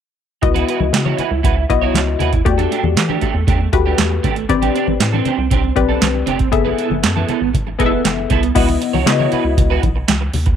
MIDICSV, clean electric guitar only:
0, 0, Header, 1, 3, 480
1, 0, Start_track
1, 0, Key_signature, 4, "minor"
1, 0, Tempo, 508475
1, 401, Time_signature, 4, 2, 24, 8
1, 9974, End_track
2, 0, Start_track
2, 0, Title_t, "Clean electric guitar"
2, 0, Program_c, 0, 27
2, 514, Note_on_c, 0, 71, 72
2, 523, Note_on_c, 0, 66, 63
2, 532, Note_on_c, 0, 64, 62
2, 625, Note_off_c, 0, 64, 0
2, 634, Note_off_c, 0, 66, 0
2, 637, Note_on_c, 0, 64, 67
2, 641, Note_off_c, 0, 71, 0
2, 646, Note_on_c, 0, 66, 64
2, 652, Note_on_c, 0, 71, 75
2, 744, Note_off_c, 0, 71, 0
2, 757, Note_off_c, 0, 66, 0
2, 798, Note_off_c, 0, 64, 0
2, 995, Note_on_c, 0, 73, 68
2, 1003, Note_on_c, 0, 66, 61
2, 1009, Note_on_c, 0, 64, 53
2, 1097, Note_off_c, 0, 64, 0
2, 1106, Note_off_c, 0, 66, 0
2, 1109, Note_on_c, 0, 64, 81
2, 1118, Note_on_c, 0, 66, 72
2, 1123, Note_off_c, 0, 73, 0
2, 1127, Note_on_c, 0, 71, 83
2, 1224, Note_off_c, 0, 71, 0
2, 1235, Note_off_c, 0, 66, 0
2, 1307, Note_off_c, 0, 64, 0
2, 1352, Note_on_c, 0, 64, 76
2, 1360, Note_on_c, 0, 66, 79
2, 1369, Note_on_c, 0, 71, 87
2, 1462, Note_off_c, 0, 71, 0
2, 1475, Note_off_c, 0, 66, 0
2, 1549, Note_off_c, 0, 64, 0
2, 1714, Note_on_c, 0, 73, 61
2, 1725, Note_on_c, 0, 66, 60
2, 1731, Note_on_c, 0, 64, 47
2, 1876, Note_off_c, 0, 73, 0
2, 1881, Note_off_c, 0, 66, 0
2, 1885, Note_off_c, 0, 64, 0
2, 2069, Note_on_c, 0, 64, 67
2, 2082, Note_on_c, 0, 66, 76
2, 2089, Note_on_c, 0, 71, 84
2, 2184, Note_off_c, 0, 71, 0
2, 2195, Note_off_c, 0, 66, 0
2, 2267, Note_off_c, 0, 64, 0
2, 2434, Note_on_c, 0, 69, 74
2, 2443, Note_on_c, 0, 62, 62
2, 2450, Note_on_c, 0, 57, 54
2, 2543, Note_off_c, 0, 57, 0
2, 2552, Note_off_c, 0, 62, 0
2, 2555, Note_on_c, 0, 57, 62
2, 2564, Note_on_c, 0, 62, 77
2, 2567, Note_off_c, 0, 69, 0
2, 2571, Note_on_c, 0, 67, 77
2, 2668, Note_off_c, 0, 67, 0
2, 2680, Note_off_c, 0, 62, 0
2, 2717, Note_off_c, 0, 57, 0
2, 2916, Note_on_c, 0, 67, 58
2, 2925, Note_on_c, 0, 62, 59
2, 2932, Note_on_c, 0, 57, 52
2, 3021, Note_off_c, 0, 57, 0
2, 3030, Note_off_c, 0, 62, 0
2, 3033, Note_on_c, 0, 57, 76
2, 3037, Note_off_c, 0, 67, 0
2, 3041, Note_on_c, 0, 62, 69
2, 3048, Note_on_c, 0, 67, 80
2, 3149, Note_off_c, 0, 67, 0
2, 3158, Note_off_c, 0, 62, 0
2, 3229, Note_off_c, 0, 57, 0
2, 3277, Note_on_c, 0, 57, 79
2, 3285, Note_on_c, 0, 62, 88
2, 3292, Note_on_c, 0, 67, 82
2, 3389, Note_off_c, 0, 67, 0
2, 3399, Note_off_c, 0, 62, 0
2, 3471, Note_off_c, 0, 57, 0
2, 3642, Note_on_c, 0, 67, 62
2, 3651, Note_on_c, 0, 62, 55
2, 3656, Note_on_c, 0, 57, 44
2, 3750, Note_off_c, 0, 57, 0
2, 3757, Note_off_c, 0, 62, 0
2, 3761, Note_off_c, 0, 67, 0
2, 3995, Note_on_c, 0, 57, 70
2, 4004, Note_on_c, 0, 62, 66
2, 4013, Note_on_c, 0, 67, 71
2, 4108, Note_off_c, 0, 67, 0
2, 4117, Note_off_c, 0, 62, 0
2, 4190, Note_off_c, 0, 57, 0
2, 4361, Note_on_c, 0, 67, 84
2, 4371, Note_on_c, 0, 62, 69
2, 4376, Note_on_c, 0, 60, 63
2, 4469, Note_off_c, 0, 60, 0
2, 4477, Note_off_c, 0, 62, 0
2, 4480, Note_on_c, 0, 60, 71
2, 4487, Note_off_c, 0, 67, 0
2, 4488, Note_on_c, 0, 62, 68
2, 4499, Note_on_c, 0, 67, 70
2, 4591, Note_off_c, 0, 67, 0
2, 4604, Note_off_c, 0, 62, 0
2, 4639, Note_off_c, 0, 60, 0
2, 4838, Note_on_c, 0, 69, 58
2, 4847, Note_on_c, 0, 62, 52
2, 4856, Note_on_c, 0, 60, 49
2, 4949, Note_off_c, 0, 60, 0
2, 4958, Note_off_c, 0, 62, 0
2, 4961, Note_on_c, 0, 60, 76
2, 4969, Note_on_c, 0, 62, 83
2, 4974, Note_off_c, 0, 69, 0
2, 4978, Note_on_c, 0, 67, 77
2, 5074, Note_off_c, 0, 67, 0
2, 5086, Note_off_c, 0, 62, 0
2, 5153, Note_off_c, 0, 60, 0
2, 5196, Note_on_c, 0, 60, 84
2, 5207, Note_on_c, 0, 62, 84
2, 5213, Note_on_c, 0, 67, 79
2, 5311, Note_off_c, 0, 67, 0
2, 5323, Note_off_c, 0, 62, 0
2, 5391, Note_off_c, 0, 60, 0
2, 5556, Note_on_c, 0, 69, 61
2, 5564, Note_on_c, 0, 62, 58
2, 5571, Note_on_c, 0, 60, 45
2, 5717, Note_off_c, 0, 69, 0
2, 5721, Note_off_c, 0, 62, 0
2, 5725, Note_off_c, 0, 60, 0
2, 5913, Note_on_c, 0, 60, 80
2, 5923, Note_on_c, 0, 62, 62
2, 5931, Note_on_c, 0, 67, 88
2, 6025, Note_off_c, 0, 67, 0
2, 6036, Note_off_c, 0, 62, 0
2, 6109, Note_off_c, 0, 60, 0
2, 6274, Note_on_c, 0, 71, 82
2, 6282, Note_on_c, 0, 64, 71
2, 6291, Note_on_c, 0, 59, 70
2, 6385, Note_off_c, 0, 59, 0
2, 6392, Note_off_c, 0, 64, 0
2, 6396, Note_on_c, 0, 59, 59
2, 6403, Note_on_c, 0, 64, 64
2, 6410, Note_off_c, 0, 71, 0
2, 6413, Note_on_c, 0, 69, 67
2, 6510, Note_off_c, 0, 69, 0
2, 6521, Note_off_c, 0, 64, 0
2, 6557, Note_off_c, 0, 59, 0
2, 6756, Note_on_c, 0, 69, 58
2, 6763, Note_on_c, 0, 64, 55
2, 6770, Note_on_c, 0, 59, 53
2, 6862, Note_off_c, 0, 59, 0
2, 6872, Note_off_c, 0, 64, 0
2, 6874, Note_on_c, 0, 59, 71
2, 6877, Note_off_c, 0, 69, 0
2, 6884, Note_on_c, 0, 64, 82
2, 6889, Note_on_c, 0, 69, 93
2, 6984, Note_off_c, 0, 69, 0
2, 6993, Note_off_c, 0, 64, 0
2, 7069, Note_off_c, 0, 59, 0
2, 7358, Note_on_c, 0, 59, 77
2, 7365, Note_on_c, 0, 64, 70
2, 7374, Note_on_c, 0, 69, 70
2, 7467, Note_off_c, 0, 69, 0
2, 7480, Note_off_c, 0, 64, 0
2, 7552, Note_off_c, 0, 59, 0
2, 7835, Note_on_c, 0, 59, 66
2, 7844, Note_on_c, 0, 64, 80
2, 7851, Note_on_c, 0, 69, 82
2, 7948, Note_off_c, 0, 69, 0
2, 7961, Note_off_c, 0, 64, 0
2, 8030, Note_off_c, 0, 59, 0
2, 8074, Note_on_c, 0, 64, 82
2, 8083, Note_on_c, 0, 66, 96
2, 8090, Note_on_c, 0, 71, 94
2, 8186, Note_off_c, 0, 71, 0
2, 8199, Note_off_c, 0, 66, 0
2, 8269, Note_off_c, 0, 64, 0
2, 8434, Note_on_c, 0, 73, 67
2, 8443, Note_on_c, 0, 66, 60
2, 8450, Note_on_c, 0, 64, 50
2, 8547, Note_off_c, 0, 64, 0
2, 8554, Note_off_c, 0, 66, 0
2, 8567, Note_off_c, 0, 73, 0
2, 8676, Note_on_c, 0, 73, 67
2, 8685, Note_on_c, 0, 66, 57
2, 8693, Note_on_c, 0, 64, 57
2, 8784, Note_off_c, 0, 64, 0
2, 8794, Note_off_c, 0, 66, 0
2, 8796, Note_on_c, 0, 64, 74
2, 8806, Note_on_c, 0, 66, 82
2, 8810, Note_off_c, 0, 73, 0
2, 8813, Note_on_c, 0, 71, 83
2, 8909, Note_off_c, 0, 71, 0
2, 8920, Note_off_c, 0, 66, 0
2, 8990, Note_off_c, 0, 64, 0
2, 9158, Note_on_c, 0, 71, 77
2, 9167, Note_on_c, 0, 66, 79
2, 9175, Note_on_c, 0, 64, 65
2, 9266, Note_off_c, 0, 64, 0
2, 9271, Note_off_c, 0, 66, 0
2, 9278, Note_off_c, 0, 71, 0
2, 9974, End_track
3, 0, Start_track
3, 0, Title_t, "Muted clean electric guitar strokes"
3, 396, Note_on_c, 9, 29, 38
3, 490, Note_off_c, 9, 29, 0
3, 755, Note_on_c, 9, 29, 44
3, 850, Note_off_c, 9, 29, 0
3, 879, Note_on_c, 9, 29, 41
3, 973, Note_off_c, 9, 29, 0
3, 1235, Note_on_c, 9, 29, 52
3, 1330, Note_off_c, 9, 29, 0
3, 1473, Note_on_c, 9, 29, 41
3, 1567, Note_off_c, 9, 29, 0
3, 1597, Note_on_c, 9, 29, 34
3, 1691, Note_off_c, 9, 29, 0
3, 1957, Note_on_c, 9, 29, 57
3, 2051, Note_off_c, 9, 29, 0
3, 2195, Note_on_c, 9, 29, 53
3, 2290, Note_off_c, 9, 29, 0
3, 2317, Note_on_c, 9, 29, 41
3, 2412, Note_off_c, 9, 29, 0
3, 2679, Note_on_c, 9, 29, 42
3, 2773, Note_off_c, 9, 29, 0
3, 2798, Note_on_c, 9, 29, 33
3, 2893, Note_off_c, 9, 29, 0
3, 3160, Note_on_c, 9, 29, 39
3, 3255, Note_off_c, 9, 29, 0
3, 3400, Note_on_c, 9, 29, 40
3, 3495, Note_off_c, 9, 29, 0
3, 3518, Note_on_c, 9, 29, 35
3, 3613, Note_off_c, 9, 29, 0
3, 3761, Note_on_c, 9, 29, 47
3, 3855, Note_off_c, 9, 29, 0
3, 3876, Note_on_c, 9, 29, 52
3, 3971, Note_off_c, 9, 29, 0
3, 4119, Note_on_c, 9, 29, 49
3, 4214, Note_off_c, 9, 29, 0
3, 4241, Note_on_c, 9, 29, 41
3, 4336, Note_off_c, 9, 29, 0
3, 4602, Note_on_c, 9, 29, 44
3, 4697, Note_off_c, 9, 29, 0
3, 4722, Note_on_c, 9, 29, 36
3, 4817, Note_off_c, 9, 29, 0
3, 5086, Note_on_c, 9, 29, 39
3, 5180, Note_off_c, 9, 29, 0
3, 5322, Note_on_c, 9, 29, 40
3, 5417, Note_off_c, 9, 29, 0
3, 5439, Note_on_c, 9, 29, 38
3, 5533, Note_off_c, 9, 29, 0
3, 5799, Note_on_c, 9, 29, 54
3, 5893, Note_off_c, 9, 29, 0
3, 6036, Note_on_c, 9, 29, 55
3, 6130, Note_off_c, 9, 29, 0
3, 6160, Note_on_c, 9, 29, 39
3, 6254, Note_off_c, 9, 29, 0
3, 6522, Note_on_c, 9, 29, 32
3, 6616, Note_off_c, 9, 29, 0
3, 6637, Note_on_c, 9, 29, 42
3, 6732, Note_off_c, 9, 29, 0
3, 6995, Note_on_c, 9, 29, 45
3, 7089, Note_off_c, 9, 29, 0
3, 7117, Note_on_c, 9, 29, 35
3, 7212, Note_off_c, 9, 29, 0
3, 7240, Note_on_c, 9, 29, 38
3, 7334, Note_off_c, 9, 29, 0
3, 7479, Note_on_c, 9, 29, 39
3, 7573, Note_off_c, 9, 29, 0
3, 7596, Note_on_c, 9, 29, 50
3, 7690, Note_off_c, 9, 29, 0
3, 7718, Note_on_c, 9, 29, 42
3, 7812, Note_off_c, 9, 29, 0
3, 7959, Note_on_c, 9, 29, 39
3, 8053, Note_off_c, 9, 29, 0
3, 8198, Note_on_c, 9, 29, 38
3, 8292, Note_off_c, 9, 29, 0
3, 8316, Note_on_c, 9, 29, 49
3, 8410, Note_off_c, 9, 29, 0
3, 8559, Note_on_c, 9, 29, 36
3, 8653, Note_off_c, 9, 29, 0
3, 8920, Note_on_c, 9, 29, 38
3, 9014, Note_off_c, 9, 29, 0
3, 9038, Note_on_c, 9, 29, 46
3, 9133, Note_off_c, 9, 29, 0
3, 9278, Note_on_c, 9, 29, 33
3, 9372, Note_off_c, 9, 29, 0
3, 9399, Note_on_c, 9, 29, 41
3, 9493, Note_off_c, 9, 29, 0
3, 9516, Note_on_c, 9, 29, 48
3, 9610, Note_off_c, 9, 29, 0
3, 9637, Note_on_c, 9, 29, 49
3, 9731, Note_off_c, 9, 29, 0
3, 9877, Note_on_c, 9, 29, 47
3, 9971, Note_off_c, 9, 29, 0
3, 9974, End_track
0, 0, End_of_file